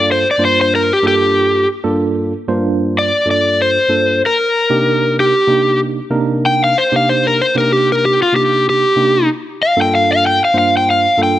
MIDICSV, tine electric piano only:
0, 0, Header, 1, 2, 480
1, 0, Start_track
1, 0, Key_signature, -2, "minor"
1, 0, Tempo, 634249
1, 1259, Time_signature, 4, 2, 24, 8
1, 8621, End_track
2, 0, Start_track
2, 0, Title_t, "Tine electric piano"
2, 0, Program_c, 0, 4
2, 0, Note_on_c, 0, 43, 79
2, 0, Note_on_c, 0, 58, 68
2, 0, Note_on_c, 0, 62, 73
2, 0, Note_on_c, 0, 65, 72
2, 0, Note_on_c, 0, 69, 92
2, 179, Note_off_c, 0, 43, 0
2, 180, Note_off_c, 0, 58, 0
2, 180, Note_off_c, 0, 62, 0
2, 180, Note_off_c, 0, 65, 0
2, 180, Note_off_c, 0, 69, 0
2, 291, Note_on_c, 0, 43, 75
2, 291, Note_on_c, 0, 58, 72
2, 292, Note_on_c, 0, 62, 76
2, 293, Note_on_c, 0, 65, 69
2, 296, Note_on_c, 0, 72, 91
2, 684, Note_off_c, 0, 43, 0
2, 684, Note_off_c, 0, 58, 0
2, 684, Note_off_c, 0, 62, 0
2, 685, Note_off_c, 0, 65, 0
2, 686, Note_off_c, 0, 72, 0
2, 779, Note_on_c, 0, 43, 71
2, 781, Note_on_c, 0, 58, 64
2, 781, Note_on_c, 0, 62, 70
2, 783, Note_on_c, 0, 65, 65
2, 783, Note_on_c, 0, 69, 84
2, 1252, Note_off_c, 0, 43, 0
2, 1252, Note_off_c, 0, 58, 0
2, 1253, Note_off_c, 0, 62, 0
2, 1253, Note_off_c, 0, 65, 0
2, 1254, Note_off_c, 0, 69, 0
2, 1387, Note_on_c, 0, 43, 84
2, 1390, Note_on_c, 0, 62, 79
2, 1391, Note_on_c, 0, 58, 74
2, 1392, Note_on_c, 0, 65, 78
2, 1392, Note_on_c, 0, 69, 94
2, 1756, Note_off_c, 0, 43, 0
2, 1757, Note_off_c, 0, 58, 0
2, 1757, Note_off_c, 0, 62, 0
2, 1758, Note_off_c, 0, 65, 0
2, 1758, Note_off_c, 0, 69, 0
2, 1875, Note_on_c, 0, 43, 95
2, 1877, Note_on_c, 0, 58, 82
2, 1879, Note_on_c, 0, 65, 81
2, 1880, Note_on_c, 0, 62, 82
2, 1880, Note_on_c, 0, 72, 95
2, 2345, Note_off_c, 0, 43, 0
2, 2346, Note_off_c, 0, 58, 0
2, 2347, Note_off_c, 0, 62, 0
2, 2347, Note_off_c, 0, 65, 0
2, 2347, Note_off_c, 0, 72, 0
2, 2464, Note_on_c, 0, 43, 65
2, 2465, Note_on_c, 0, 62, 58
2, 2466, Note_on_c, 0, 58, 53
2, 2467, Note_on_c, 0, 65, 61
2, 2468, Note_on_c, 0, 69, 65
2, 2851, Note_off_c, 0, 43, 0
2, 2852, Note_off_c, 0, 58, 0
2, 2852, Note_off_c, 0, 62, 0
2, 2852, Note_off_c, 0, 65, 0
2, 2853, Note_off_c, 0, 69, 0
2, 2942, Note_on_c, 0, 43, 64
2, 2943, Note_on_c, 0, 58, 65
2, 2945, Note_on_c, 0, 65, 60
2, 2946, Note_on_c, 0, 62, 66
2, 2947, Note_on_c, 0, 69, 79
2, 3182, Note_off_c, 0, 43, 0
2, 3182, Note_off_c, 0, 58, 0
2, 3183, Note_off_c, 0, 65, 0
2, 3184, Note_off_c, 0, 62, 0
2, 3184, Note_off_c, 0, 69, 0
2, 3556, Note_on_c, 0, 58, 70
2, 3557, Note_on_c, 0, 48, 81
2, 3558, Note_on_c, 0, 62, 72
2, 3560, Note_on_c, 0, 63, 76
2, 3561, Note_on_c, 0, 67, 86
2, 4026, Note_off_c, 0, 48, 0
2, 4026, Note_off_c, 0, 58, 0
2, 4027, Note_off_c, 0, 62, 0
2, 4027, Note_off_c, 0, 63, 0
2, 4028, Note_off_c, 0, 67, 0
2, 4140, Note_on_c, 0, 58, 71
2, 4141, Note_on_c, 0, 48, 68
2, 4142, Note_on_c, 0, 63, 69
2, 4143, Note_on_c, 0, 62, 65
2, 4144, Note_on_c, 0, 67, 82
2, 4529, Note_off_c, 0, 58, 0
2, 4530, Note_off_c, 0, 48, 0
2, 4530, Note_off_c, 0, 63, 0
2, 4531, Note_off_c, 0, 62, 0
2, 4531, Note_off_c, 0, 67, 0
2, 4618, Note_on_c, 0, 48, 86
2, 4621, Note_on_c, 0, 58, 79
2, 4621, Note_on_c, 0, 62, 80
2, 4622, Note_on_c, 0, 63, 82
2, 4622, Note_on_c, 0, 70, 98
2, 5092, Note_off_c, 0, 48, 0
2, 5093, Note_off_c, 0, 58, 0
2, 5093, Note_off_c, 0, 62, 0
2, 5094, Note_off_c, 0, 63, 0
2, 5094, Note_off_c, 0, 70, 0
2, 5236, Note_on_c, 0, 48, 72
2, 5236, Note_on_c, 0, 58, 70
2, 5238, Note_on_c, 0, 62, 69
2, 5238, Note_on_c, 0, 63, 71
2, 5240, Note_on_c, 0, 67, 75
2, 5601, Note_off_c, 0, 48, 0
2, 5601, Note_off_c, 0, 58, 0
2, 5601, Note_off_c, 0, 62, 0
2, 5602, Note_off_c, 0, 63, 0
2, 5603, Note_off_c, 0, 67, 0
2, 5714, Note_on_c, 0, 48, 75
2, 5715, Note_on_c, 0, 58, 74
2, 5715, Note_on_c, 0, 62, 65
2, 5716, Note_on_c, 0, 63, 67
2, 5719, Note_on_c, 0, 67, 79
2, 6184, Note_off_c, 0, 48, 0
2, 6185, Note_off_c, 0, 58, 0
2, 6185, Note_off_c, 0, 62, 0
2, 6185, Note_off_c, 0, 63, 0
2, 6187, Note_off_c, 0, 67, 0
2, 6302, Note_on_c, 0, 48, 61
2, 6304, Note_on_c, 0, 62, 56
2, 6305, Note_on_c, 0, 58, 57
2, 6306, Note_on_c, 0, 63, 59
2, 6307, Note_on_c, 0, 67, 68
2, 6690, Note_off_c, 0, 48, 0
2, 6691, Note_off_c, 0, 62, 0
2, 6692, Note_off_c, 0, 58, 0
2, 6692, Note_off_c, 0, 63, 0
2, 6693, Note_off_c, 0, 67, 0
2, 6783, Note_on_c, 0, 58, 71
2, 6783, Note_on_c, 0, 62, 68
2, 6784, Note_on_c, 0, 48, 72
2, 6786, Note_on_c, 0, 63, 67
2, 6788, Note_on_c, 0, 67, 80
2, 7022, Note_off_c, 0, 58, 0
2, 7022, Note_off_c, 0, 62, 0
2, 7023, Note_off_c, 0, 48, 0
2, 7023, Note_off_c, 0, 63, 0
2, 7024, Note_off_c, 0, 67, 0
2, 7391, Note_on_c, 0, 43, 80
2, 7394, Note_on_c, 0, 58, 66
2, 7394, Note_on_c, 0, 62, 75
2, 7394, Note_on_c, 0, 65, 71
2, 7394, Note_on_c, 0, 69, 85
2, 7863, Note_off_c, 0, 43, 0
2, 7864, Note_off_c, 0, 58, 0
2, 7864, Note_off_c, 0, 62, 0
2, 7864, Note_off_c, 0, 65, 0
2, 7864, Note_off_c, 0, 69, 0
2, 7975, Note_on_c, 0, 43, 70
2, 7976, Note_on_c, 0, 58, 70
2, 7977, Note_on_c, 0, 62, 69
2, 7977, Note_on_c, 0, 72, 83
2, 7979, Note_on_c, 0, 65, 68
2, 8366, Note_off_c, 0, 43, 0
2, 8367, Note_off_c, 0, 58, 0
2, 8367, Note_off_c, 0, 62, 0
2, 8367, Note_off_c, 0, 72, 0
2, 8368, Note_off_c, 0, 65, 0
2, 8458, Note_on_c, 0, 43, 77
2, 8458, Note_on_c, 0, 62, 70
2, 8459, Note_on_c, 0, 58, 67
2, 8460, Note_on_c, 0, 65, 76
2, 8463, Note_on_c, 0, 69, 85
2, 8621, Note_off_c, 0, 43, 0
2, 8621, Note_off_c, 0, 58, 0
2, 8621, Note_off_c, 0, 62, 0
2, 8621, Note_off_c, 0, 65, 0
2, 8621, Note_off_c, 0, 69, 0
2, 8621, End_track
0, 0, End_of_file